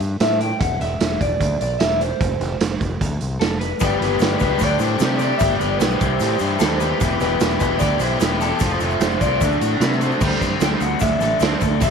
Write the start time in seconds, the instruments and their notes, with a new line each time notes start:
0.00 fingered electric bass G2, closed hi-hat
0.20 fingered electric bass A2, clean electric guitar E5, snare, closed hi-hat, tambourine
0.41 clean electric guitar G5, closed hi-hat
0.60 fingered electric bass E1, clean electric guitar F#5, kick, closed hi-hat
0.81 fingered electric bass E1, clean electric guitar E5, snare, closed hi-hat
1.00 fingered electric bass E1, snare, closed hi-hat, tambourine
1.20 fingered electric bass E1, clean electric guitar D5, kick, closed hi-hat
1.40 fingered electric bass D2, kick, closed hi-hat
1.61 fingered electric bass B1, clean electric guitar D5, closed hi-hat
1.79 fingered electric bass E1, clean electric guitar E5, snare, closed hi-hat, tambourine
2.01 clean electric guitar C5, closed hi-hat
2.21 fingered electric bass F1, kick, closed hi-hat
2.40 fingered electric bass F1, snare, closed hi-hat
2.60 fingered electric bass F1, snare, closed hi-hat, tambourine
2.81 fingered electric bass F1, kick, closed hi-hat
3.01 fingered electric bass D2, kick, closed hi-hat
3.21 fingered electric bass C2, closed hi-hat
3.40 fingered electric bass F1, clean electric guitar A4, snare, closed hi-hat, tambourine
3.60 clean electric guitar B4, closed hi-hat
3.80 fingered electric bass G1, overdriven electric guitar G3 B3 D4, kick, closed hi-hat, shaker
3.84 overdriven electric guitar G4
3.99 fingered electric bass G1, overdriven electric guitar B3 G4, clean electric guitar B4, snare, closed hi-hat
4.04 overdriven electric guitar D4
4.19 fingered electric bass G1, overdriven electric guitar B3 D4, snare, closed hi-hat, tambourine, shaker
4.24 overdriven electric guitar G4
4.30 shaker
4.39 fingered electric bass C#2, overdriven electric guitar D4 G4 B4, clean electric guitar B4, kick, closed hi-hat, shaker
4.45 overdriven electric guitar B3
4.57 fingered electric bass D2, overdriven electric guitar G3, clean electric guitar D5, shaker
4.61 overdriven electric guitar D3 A3 D4 G4, kick, closed hi-hat
4.77 fingered electric bass A2, overdriven electric guitar G4, clean electric guitar C5, shaker
4.81 overdriven electric guitar G3 A3 D4 A4, closed hi-hat
4.99 fingered electric bass C3, overdriven electric guitar G3 A3 D4 G4, snare, closed hi-hat, tambourine, shaker
5.04 overdriven electric guitar G4
5.18 overdriven electric guitar D4 G4, clean electric guitar D5, closed hi-hat, shaker
5.23 overdriven electric guitar A3 D5
5.38 fingered electric bass G1, overdriven electric guitar B3 D4, clean electric guitar E5, kick, closed hi-hat, shaker
5.42 overdriven electric guitar G3 G4
5.51 shaker
5.57 overdriven electric guitar G4, clean electric guitar D5, shaker
5.61 fingered electric bass G1, overdriven electric guitar B3 D4, closed hi-hat
5.77 fingered electric bass B1, overdriven electric guitar B3 D4, clean electric guitar B4, closed hi-hat, tambourine, shaker
5.82 overdriven electric guitar G4, snare
5.90 shaker
5.98 fingered electric bass C2, overdriven electric guitar C3 E4 G4, clean electric guitar C5, kick, closed hi-hat, shaker
6.02 overdriven electric guitar E3 C4
6.20 fingered electric bass A2, overdriven electric guitar E3 G3 C4 E4 G4, closed hi-hat, shaker
6.39 fingered electric bass G2, overdriven electric guitar E3 C4 E4 G4, closed hi-hat, shaker
6.59 fingered electric bass D#2, overdriven electric guitar E3 C4 E4, clean electric guitar A4, snare, closed hi-hat, tambourine, shaker
6.63 overdriven electric guitar G4
6.79 overdriven electric guitar C4 E4 G4, clean electric guitar B4, closed hi-hat, shaker
7.00 fingered electric bass E1, overdriven electric guitar E3 B3 E4 G4, kick, closed hi-hat, shaker
7.20 fingered electric bass E1, overdriven electric guitar B3 E4 G4, clean electric guitar B4, snare, closed hi-hat, shaker
7.40 fingered electric bass E1, overdriven electric guitar E3 B3 E4, snare, closed hi-hat, tambourine, shaker
7.45 overdriven electric guitar G4
7.50 shaker
7.58 fingered electric bass E1, overdriven electric guitar E4 G4, clean electric guitar B4, kick, closed hi-hat, shaker
7.64 overdriven electric guitar E3 B3
7.79 fingered electric bass D2, overdriven electric guitar E3, clean electric guitar D5, kick, closed hi-hat, shaker
7.83 overdriven electric guitar B3 E4 G4
8.00 fingered electric bass B1, overdriven electric guitar B3 E4 G4, clean electric guitar C5, closed hi-hat, shaker
8.04 overdriven electric guitar E3
8.20 fingered electric bass E1, overdriven electric guitar E3 B3 E4, clean electric guitar B4, snare, closed hi-hat, tambourine, shaker
8.24 overdriven electric guitar G4
8.40 overdriven electric guitar B3 E4 G4, clean electric guitar A4, closed hi-hat, shaker
8.59 fingered electric bass F1, overdriven electric guitar F3 A3 C4 F4, kick, closed hi-hat, shaker
8.70 shaker
8.80 fingered electric bass F1, overdriven electric guitar A3 C4 F4, closed hi-hat, shaker
8.84 overdriven electric guitar A3
8.90 shaker
9.00 fingered electric bass F1, overdriven electric guitar F3 A3 C4, clean electric guitar C5, snare, closed hi-hat, tambourine, shaker
9.05 overdriven electric guitar F4
9.11 shaker
9.20 fingered electric bass C2, overdriven electric guitar A3 C4 F4, clean electric guitar D5, kick, closed hi-hat, shaker
9.24 overdriven electric guitar F3
9.40 fingered electric bass D2, overdriven electric guitar D3 A3 D4 F#4, kick, closed hi-hat, shaker
9.52 shaker
9.60 fingered electric bass A2, overdriven electric guitar A3 D4 F#4, closed hi-hat, shaker
9.80 fingered electric bass C3, overdriven electric guitar A3 D4 F#4, clean electric guitar B4, snare, closed hi-hat, tambourine, shaker
9.93 shaker
10.00 overdriven electric guitar D4 F#4, clean electric guitar C5, closed hi-hat, shaker
10.11 shaker
10.21 fingered electric bass D2, overdriven electric guitar D3 G3 A3 C4, kick, crash, shaker
10.41 fingered electric bass G2, overdriven electric guitar D3 A3 C4, kick, closed hi-hat, shaker
10.60 fingered electric bass D2, overdriven electric guitar D3 G3 A3 C4, clean electric guitar G5, snare, closed hi-hat, tambourine, shaker
10.80 fingered electric bass D2, overdriven electric guitar D3 A3 C4, clean electric guitar F#5, closed hi-hat, shaker
11.00 fingered electric bass D2, overdriven electric guitar D3 A3 D4, clean electric guitar E5, kick, closed hi-hat, shaker
11.20 fingered electric bass A1, overdriven electric guitar D3 A3 A4, closed hi-hat, shaker
11.40 fingered electric bass D2, overdriven electric guitar D3 A3 C4, clean electric guitar D5, snare, closed hi-hat, tambourine, shaker
11.60 fingered electric bass D2, overdriven electric guitar D3 A3 A4, kick, closed hi-hat, shaker
11.80 fingered electric bass E1, overdriven electric guitar E3 G3 C4, clean electric guitar E5, kick, closed hi-hat, shaker